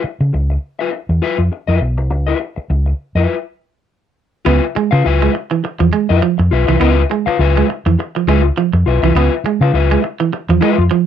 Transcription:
0.04 muted fingered electric bass stroke soft
0.04 muted clean electric guitar stroke soft
0.20 0.30 C#3 medium
0.20 muted clean electric guitar stroke soft
0.33 0.56 C#2 medium
0.33 muted clean electric guitar stroke soft
0.50 muted clean electric guitar stroke soft
0.79 0.92 F4 medium
0.79 0.92 B4 medium
0.79 0.93 E5 medium
0.93 muted clean electric guitar stroke soft
1.09 1.19 E2 medium
1.09 muted clean electric guitar stroke soft
1.22 1.40 F4 medium
1.22 1.40 B4 medium
1.22 1.38 E5 medium
1.38 1.48 F2 medium
1.38 muted clean electric guitar stroke soft
1.52 muted clean electric guitar stroke soft
1.67 1.78 F2 medium
1.67 1.80 F4 medium
1.67 1.81 B4 medium
1.67 1.81 E5 medium
1.81 1.97 B1 medium
1.81 muted clean electric guitar stroke soft
1.97 2.10 C2 medium
1.97 muted clean electric guitar stroke soft
2.10 2.32 C#2 loud
2.10 muted clean electric guitar stroke soft
2.27 2.39 F4 medium
2.27 2.39 B4 medium
2.27 2.40 E5 medium
2.40 muted clean electric guitar stroke soft
2.56 muted clean electric guitar stroke soft
2.56 muted fingered electric bass stroke soft
2.70 2.92 C#2 loud
2.70 muted clean electric guitar stroke soft
2.86 muted clean electric guitar stroke soft
3.15 3.25 F2 medium
3.15 3.35 F4 medium
3.15 3.35 B4 medium
3.15 3.34 E5 medium
4.45 4.58 C#2 loud
4.45 4.60 B3 loud
4.45 4.63 F4 medium
4.45 4.64 B4 medium
4.45 4.64 E5 medium
4.75 4.90 G#3 medium
4.75 muted clean electric guitar stroke soft
4.75 muted fingered electric bass stroke soft
4.91 5.02 C#3 loud
4.91 5.03 F4 medium
4.91 5.03 B4 medium
4.91 5.02 F5 medium
4.91 muted clean electric guitar stroke soft
5.04 5.27 C#2 medium
5.04 5.32 F4 medium
5.04 5.33 B4 loud
5.04 5.33 E5 loud
5.22 5.33 G#3 medium
5.34 muted clean electric guitar stroke soft
5.51 5.62 E3 medium
5.51 muted clean electric guitar stroke soft
5.64 muted clean electric guitar stroke soft
5.79 5.90 E2 medium
5.79 5.91 F3 medium
5.79 muted clean electric guitar stroke soft
5.93 6.07 G#3 medium
6.09 6.19 F2 medium
6.09 6.20 F4 medium
6.09 6.21 B4 medium
6.09 6.21 E5 loud
6.21 6.36 F3 medium
6.21 muted clean electric guitar stroke soft
6.38 6.49 F2 medium
6.38 muted clean electric guitar stroke medium
6.51 6.64 B1 loud
6.51 6.65 F4 medium
6.51 6.66 B4 medium
6.51 6.66 E5 medium
6.68 6.78 C2 medium
6.68 6.79 E3 medium
6.68 6.79 F4 medium
6.68 6.79 B4 medium
6.68 6.79 E5 medium
6.80 7.03 C#2 loud
6.80 6.95 B3 loud
6.80 7.02 F4 loud
6.80 7.02 B4 loud
6.80 7.02 E5 medium
7.10 7.24 G#3 medium
7.10 muted clean electric guitar stroke medium
7.26 7.38 F4 medium
7.26 7.38 B4 medium
7.26 7.37 F5 medium
7.26 muted fingered electric bass stroke soft
7.26 muted clean electric guitar stroke soft
7.39 7.61 C#2 loud
7.39 7.66 F4 medium
7.39 7.67 B4 medium
7.39 7.67 E5 loud
7.57 7.67 G#3 medium
7.69 muted clean electric guitar stroke soft
7.86 7.95 F2 medium
7.86 7.97 E3 medium
7.86 muted clean electric guitar stroke medium
7.99 muted clean electric guitar stroke soft
8.15 8.26 F3 medium
8.15 muted clean electric guitar stroke soft
8.28 8.49 C#2 loud
8.28 8.42 G#3 medium
8.28 8.45 F4 medium
8.28 8.44 B4 medium
8.28 8.43 E5 loud
8.44 muted clean electric guitar stroke medium
8.57 8.71 F3 medium
8.57 muted clean electric guitar stroke soft
8.73 8.83 F2 medium
8.73 muted clean electric guitar stroke soft
8.86 8.98 B1 medium
8.86 9.00 F4 medium
8.86 9.01 B4 medium
8.86 9.01 E5 medium
9.03 9.12 C2 medium
9.03 9.14 E3 medium
9.03 9.15 F4 medium
9.03 9.14 B4 medium
9.03 9.14 E5 medium
9.15 9.27 C#2 loud
9.15 9.30 B3 loud
9.15 9.33 F4 medium
9.15 9.33 B4 medium
9.15 9.34 E5 medium
9.44 9.59 G#3 medium
9.44 muted fingered electric bass stroke soft
9.44 muted clean electric guitar stroke soft
9.61 9.70 C#3 loud
9.61 9.73 F4 medium
9.61 9.73 B4 medium
9.61 9.72 F5 medium
9.61 muted clean electric guitar stroke medium
9.73 9.95 C#2 medium
9.73 10.01 F4 medium
9.73 10.01 B4 medium
9.73 10.02 E5 medium
9.91 10.02 G#3 medium
10.03 muted clean electric guitar stroke soft
10.20 10.31 E3 medium
10.20 muted clean electric guitar stroke medium
10.33 muted clean electric guitar stroke soft
10.49 10.58 E2 medium
10.49 10.60 F3 medium
10.49 muted clean electric guitar stroke soft
10.61 10.76 G#3 medium
10.61 10.82 F4 medium
10.61 10.79 B4 medium
10.61 10.77 E5 medium
10.78 10.88 F2 medium
10.78 muted clean electric guitar stroke medium
10.91 11.05 F3 medium
10.91 muted clean electric guitar stroke soft

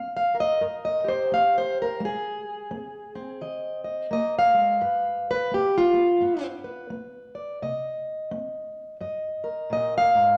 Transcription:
0.00 0.56 C4 medium
0.17 0.39 F5 medium
0.35 0.60 A#4 soft
0.40 0.62 D#5 loud
0.61 1.26 G2 medium
0.61 1.08 A#4 soft
0.85 1.08 D#5 medium
1.04 2.03 G4 medium
1.08 1.32 C5 medium
1.32 1.96 C4 medium
1.32 1.56 F5 medium
1.58 1.80 C5 loud
1.82 2.03 A#4 loud
2.00 2.65 G#3 medium
2.05 3.43 G#4 medium
2.71 3.14 C4 medium
3.15 4.10 C4 medium
3.41 4.06 D#3 medium
3.41 3.83 D#5 soft
3.84 4.11 D#5 soft
4.11 4.54 A#3 medium
4.11 4.35 D#5 loud
4.38 5.30 F5 loud
4.54 4.81 G#3 medium
4.81 5.46 G2 medium
4.81 5.28 B4 medium
5.31 5.53 B4 loud
5.52 5.93 B3 medium
5.52 5.76 G4 medium
5.78 6.46 F4 loud
5.94 6.20 B3 soft
6.21 6.85 G2 medium
6.21 6.89 B3 soft
6.64 7.58 B4 medium
6.90 7.55 B3 medium
7.35 7.62 D5 soft
7.62 8.26 C3 medium
7.62 9.00 D#5 medium
8.31 8.96 C4 medium
9.00 9.65 G2 medium
9.00 9.71 D#5 soft
9.44 10.37 A#4 medium
9.70 10.13 A#2 medium
9.70 9.95 D#5 loud
9.98 10.37 F5 loud
10.15 10.37 G#2 medium

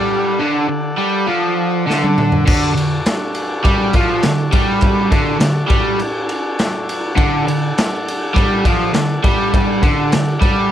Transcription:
0.00 0.40 G3 loud
0.00 2.44 A4 medium
0.00 2.45 D5 medium
0.00 2.44 F#5 medium
0.39 0.68 D3 loud
0.69 0.94 D3 medium
0.98 1.28 G3 loud
1.27 1.87 F3 loud
1.88 2.45 D3 loud
1.88 snare medium
2.04 high tom medium
2.18 mid tom loud
2.32 floor tom medium
2.46 2.74 D3 loud
2.46 7.14 F#4 medium
2.46 7.13 A4 medium
2.46 7.15 D5 medium
2.46 kick loud
2.46 crash loud
2.75 3.00 D3 medium
2.75 ride medium
3.06 snare loud
3.06 ride loud
3.35 ride medium
3.64 3.94 G3 loud
3.64 kick loud
3.64 ride loud
3.93 4.24 F3 loud
3.93 kick loud
3.93 ride medium
4.23 4.49 D3 medium
4.23 snare loud
4.23 ride loud
4.52 5.11 G3 loud
4.52 kick loud
4.52 ride medium
4.81 kick loud
4.81 ride loud
5.11 5.38 D3 loud
5.11 kick loud
5.11 ride medium
5.39 5.64 D3 medium
5.39 snare loud
5.39 ride loud
5.68 5.98 G3 loud
5.68 kick loud
5.68 ride medium
5.99 ride loud
6.29 ride medium
6.59 snare loud
6.59 ride medium
6.89 ride medium
7.13 7.46 D3 loud
7.13 10.72 A4 medium
7.13 10.72 D5 medium
7.13 10.72 F#5 medium
7.13 ride loud
7.18 kick loud
7.47 7.71 D3 medium
7.47 ride medium
7.78 snare loud
7.78 ride loud
8.08 ride medium
8.34 8.64 G3 loud
8.34 kick loud
8.34 ride loud
8.65 8.94 F3 loud
8.65 kick loud
8.65 ride medium
8.94 9.18 D3 medium
8.94 snare loud
8.94 ride loud
9.24 9.82 G3 loud
9.24 kick loud
9.24 ride medium
9.54 kick loud
9.54 ride loud
9.83 10.11 D3 loud
9.83 kick loud
9.83 ride medium
10.12 10.37 D3 medium
10.12 snare loud
10.12 ride loud
10.41 10.70 G3 loud
10.41 kick loud
10.41 ride medium

